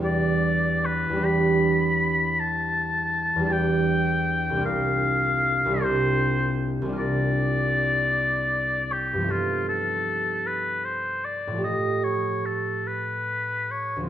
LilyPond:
<<
  \new Staff \with { instrumentName = "Oboe" } { \time 12/8 \key c \major \tempo 4. = 52 d''4 b'8 b''4. a''4. g''4. | f''4. c''4 r8 d''2~ d''8 g'8 | f'8 a'4 b'8 c''8 d''8 ees''8 cis''8 a'8 b'4 cis''8 | }
  \new Staff \with { instrumentName = "Harp" } { \time 12/8 \key c \major <e, g d' e' g'>4. <e, g d' e' g'>2. <e, g d' e' g'>4. | <c, g d' f' bes'>4. <c, g d' f' bes'>4. <c, g d' f' bes'>2. | <g, f b e' a'>2. <a, eis a g' a'>2. | }
>>